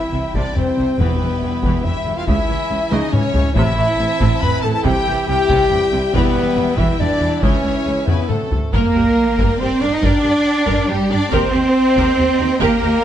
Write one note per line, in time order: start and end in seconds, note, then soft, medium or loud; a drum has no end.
0.00 0.95 E3 medium
0.00 2.23 G3 medium
0.00 0.33 E4 medium
0.00 0.37 E4 medium
0.00 0.95 E4 medium
0.00 0.34 E5 medium
0.00 0.36 E5 medium
0.00 0.95 E5 medium
0.00 2.27 G5 medium
0.13 0.21 C2 soft
0.13 0.21 C3 medium
0.13 0.22 C3 medium
0.34 0.42 C2 medium
0.34 0.43 C3 medium
0.34 0.55 C3 medium
0.34 0.55 D4 medium
0.34 0.56 D4 medium
0.34 0.58 D5 medium
0.34 0.56 D5 medium
0.34 taiko medium
0.53 0.64 C2 medium
0.53 0.65 C3 soft
0.53 0.65 E3 medium
0.53 0.97 C4 medium
0.53 1.02 C4 medium
0.53 1.01 C5 medium
0.53 taiko low-mid medium
0.58 1.00 C5 medium
0.78 0.86 C2 medium
0.78 0.86 C3 medium
0.78 0.87 C3 medium
0.98 1.07 E1 medium
0.98 1.07 E2 medium
0.98 1.60 E2 medium
0.98 3.51 E3 medium
0.98 1.20 E3 medium
0.98 1.84 B3 medium
0.98 1.87 B3 medium
0.98 3.52 E4 medium
0.98 1.83 B4 medium
0.98 1.86 B4 medium
0.98 3.52 E5 medium
0.98 taiko medium
1.20 1.28 E1 medium
1.20 1.29 E2 medium
1.20 1.30 E3 medium
1.42 1.50 E1 soft
1.42 1.51 E2 medium
1.42 1.52 E3 medium
1.63 1.72 E1 medium
1.63 1.72 E2 medium
1.63 1.84 E3 medium
1.63 taiko medium
1.83 1.92 E1 medium
1.83 1.93 E2 medium
1.83 1.93 E3 medium
1.83 2.17 E4 loud
1.83 2.19 E4 medium
1.83 2.15 E5 medium
1.83 2.17 E5 medium
1.83 taiko low-mid medium
2.05 2.15 E1 medium
2.05 2.13 E2 medium
2.05 2.14 E3 medium
2.16 2.28 F4 medium
2.16 2.27 F4 medium
2.16 2.26 F5 medium
2.16 2.27 F5 medium
2.27 2.35 C#2 medium
2.27 2.36 C#2 medium
2.27 2.47 C#3 medium
2.27 3.51 G#3 medium
2.27 2.90 E4 medium
2.27 2.93 E4 medium
2.27 2.95 E5 medium
2.27 2.90 E5 medium
2.27 3.53 G#5 medium
2.27 taiko loud
2.48 2.56 C#2 medium
2.48 2.58 C#2 medium
2.48 2.58 E3 medium
2.70 2.78 C#2 medium
2.70 2.79 C#3 medium
2.91 2.99 C#2 loud
2.91 3.00 C#2 medium
2.91 3.11 C#3 medium
2.91 3.14 D#4 medium
2.91 3.13 D#4 medium
2.91 3.13 D#5 medium
2.91 3.12 D#5 medium
2.91 taiko high medium
3.12 3.22 C#2 medium
3.12 3.23 E3 medium
3.12 3.55 C#4 loud
3.12 3.55 C#4 medium
3.12 3.55 C#5 loud
3.12 3.59 C#5 medium
3.12 taiko mid medium
3.33 3.42 C#2 medium
3.33 3.41 C#3 medium
3.33 taiko low loud
3.55 3.63 A1 loud
3.55 4.16 A2 medium
3.55 3.64 A2 loud
3.55 3.76 C3 loud
3.55 5.96 E3 loud
3.55 4.80 C4 medium
3.55 4.39 E4 loud
3.55 6.09 E4 medium
3.55 4.43 E4 loud
3.55 4.80 C5 medium
3.55 4.40 E5 loud
3.55 4.40 E5 medium
3.55 4.80 A5 medium
3.55 taiko loud
3.77 3.85 A1 medium
3.77 3.85 A2 medium
3.77 3.85 E3 medium
3.99 4.07 A1 medium
3.99 4.07 A2 medium
3.99 4.08 C3 medium
4.20 4.29 A1 loud
4.20 4.29 A2 loud
4.20 4.41 C3 medium
4.20 taiko medium
4.41 4.51 A1 medium
4.41 4.51 A2 medium
4.41 4.50 E3 medium
4.41 4.62 B4 loud
4.41 4.65 B4 loud
4.41 4.62 B5 loud
4.41 4.63 B5 loud
4.41 taiko low-mid medium
4.62 4.72 A1 medium
4.62 4.72 A2 medium
4.62 4.71 C3 medium
4.62 4.73 A4 medium
4.62 4.73 A4 loud
4.62 4.72 A5 medium
4.62 4.73 A5 medium
4.73 4.86 A4 medium
4.73 4.85 A4 loud
4.73 4.84 A5 medium
4.73 4.84 A5 loud
4.83 4.93 C2 loud
4.83 5.04 C3 medium
4.83 4.94 C3 loud
4.83 7.38 G3 loud
4.83 5.27 G4 loud
4.83 5.15 G4 loud
4.83 7.38 E5 medium
4.83 7.38 G5 medium
4.83 5.26 G5 loud
4.83 5.27 G5 loud
4.83 taiko loud
5.07 5.15 C2 medium
5.07 5.16 C3 medium
5.07 5.15 E3 medium
5.28 5.36 C2 medium
5.28 5.37 C3 medium
5.28 5.85 G4 loud
5.28 6.12 G4 loud
5.28 5.85 G5 loud
5.28 6.12 G5 loud
5.49 5.58 C2 loud
5.49 5.69 C3 loud
5.49 5.59 C3 loud
5.49 taiko loud
5.71 5.79 C2 medium
5.71 5.79 C3 medium
5.71 5.79 E3 medium
5.71 taiko low-mid medium
5.91 6.01 C2 medium
5.91 5.99 C3 medium
5.91 6.01 C3 medium
6.13 6.22 E1 loud
6.13 6.23 E2 loud
6.13 8.25 E3 loud
6.13 6.34 E3 medium
6.13 6.80 B3 loud
6.13 6.79 B3 loud
6.13 8.26 E4 medium
6.13 6.74 B4 loud
6.13 6.79 B4 medium
6.13 taiko loud
6.35 6.43 E1 medium
6.35 6.44 E2 medium
6.35 6.44 E3 medium
6.56 6.65 E1 medium
6.56 6.65 E2 medium
6.56 6.64 E3 medium
6.77 6.85 E1 medium
6.77 6.86 E2 loud
6.77 6.97 E3 medium
6.77 6.99 E4 loud
6.77 7.00 E4 medium
6.77 7.02 E5 loud
6.77 7.00 E5 medium
6.77 taiko medium
6.99 7.08 E1 medium
6.99 7.08 E2 medium
6.99 7.07 E3 medium
6.99 7.43 D4 loud
6.99 7.44 D4 medium
6.99 7.41 D5 loud
6.99 7.43 D5 medium
6.99 taiko low-mid medium
7.20 7.29 E1 medium
7.20 7.29 E2 medium
7.20 7.28 E3 medium
7.42 7.50 C#2 medium
7.42 7.62 C#3 medium
7.42 8.25 G#3 medium
7.42 8.09 C#4 medium
7.42 8.08 C#4 loud
7.42 8.08 C#5 medium
7.42 8.07 C#5 medium
7.42 8.27 E5 medium
7.42 8.28 G#5 medium
7.42 taiko loud
7.64 7.72 C#2 medium
7.64 7.72 E3 medium
7.86 7.94 C#2 medium
7.86 7.95 C#2 medium
7.86 7.94 C#3 medium
8.06 8.16 C#2 medium
8.06 8.28 C#3 medium
8.06 8.29 B3 medium
8.06 8.30 B3 medium
8.06 8.30 B4 medium
8.06 taiko low-mid medium
8.28 8.37 D2 medium
8.28 8.39 D2 soft
8.28 8.38 D3 medium
8.28 8.51 F#3 medium
8.28 8.74 A3 medium
8.28 8.72 A3 medium
8.28 8.51 C4 medium
8.28 8.73 A4 medium
8.28 8.53 A4 medium
8.28 8.74 A4 medium
8.28 8.53 C5 medium
8.28 8.53 F#5 medium
8.28 taiko mid medium
8.51 8.59 D2 medium
8.51 8.60 D2 medium
8.51 8.59 C3 soft
8.51 taiko low medium
8.73 8.81 G2 medium
8.73 9.56 A#3 medium
8.73 9.56 A#3 loud
8.73 9.57 A#3 loud
8.73 8.93 A#4 loud
8.73 9.62 A#4 loud
8.73 9.57 A#4 medium
8.73 11.29 D5 medium
8.73 11.29 G5 medium
8.73 taiko loud
8.73 sub drop medium
8.95 9.03 G2 medium
8.95 9.03 G4 medium
8.95 9.03 A#4 medium
9.38 9.47 G2 medium
9.38 9.59 A#4 medium
9.38 taiko medium
9.60 9.68 G2 medium
9.60 9.82 C4 medium
9.60 9.69 G4 medium
9.60 9.70 A#4 medium
9.60 9.83 C5 medium
9.60 9.82 C5 medium
9.80 9.89 G2 medium
9.80 9.92 D4 medium
9.80 9.93 D4 loud
9.80 9.91 D4 medium
9.80 9.90 A#4 medium
9.80 9.94 D5 medium
9.80 9.93 D5 medium
9.84 9.94 D4 medium
9.92 10.03 D#4 medium
9.92 10.04 D#4 medium
9.92 10.03 D#5 medium
9.92 10.04 D#5 medium
10.02 10.11 G2 loud
10.02 10.89 D4 medium
10.02 10.89 D4 loud
10.02 10.90 D4 loud
10.02 10.22 A#4 medium
10.02 10.91 D5 loud
10.02 10.90 D5 medium
10.02 taiko medium
10.23 10.32 G2 medium
10.23 10.31 G4 medium
10.23 10.31 A#4 medium
10.66 10.75 G2 medium
10.66 10.87 A#4 medium
10.66 taiko medium
10.88 10.97 G2 medium
10.88 11.10 G3 medium
10.88 11.11 G3 medium
10.88 11.11 G3 loud
10.88 10.96 G4 medium
10.88 11.11 G4 medium
10.88 11.13 G4 medium
10.88 10.96 A#4 medium
11.10 11.18 G2 medium
11.10 11.18 D4 medium
11.10 11.33 D4 loud
11.10 11.33 D4 medium
11.10 11.18 A#4 medium
11.10 11.33 D5 loud
11.10 11.35 D5 loud
11.31 11.39 D#2 loud
11.31 12.59 C4 loud
11.31 12.43 C4 loud
11.31 11.51 G4 loud
11.31 11.53 A#4 loud
11.31 12.62 C5 loud
11.31 13.04 D#5 medium
11.31 13.04 G5 medium
11.31 taiko loud
11.53 11.62 D#2 medium
11.53 11.61 G4 medium
11.97 12.05 D#2 medium
11.97 12.17 G4 medium
11.97 12.17 A#4 medium
11.97 taiko medium
12.18 12.26 D#2 medium
12.18 12.27 G4 medium
12.39 12.47 D#2 medium
12.39 12.48 D#4 medium
12.39 12.48 G4 medium
12.60 12.69 D#2 loud
12.60 13.04 A#3 loud
12.60 12.81 G4 loud
12.60 12.81 A#4 loud
12.60 13.04 A#4 loud
12.60 taiko loud
12.82 12.90 D#2 medium
12.82 12.92 G4 medium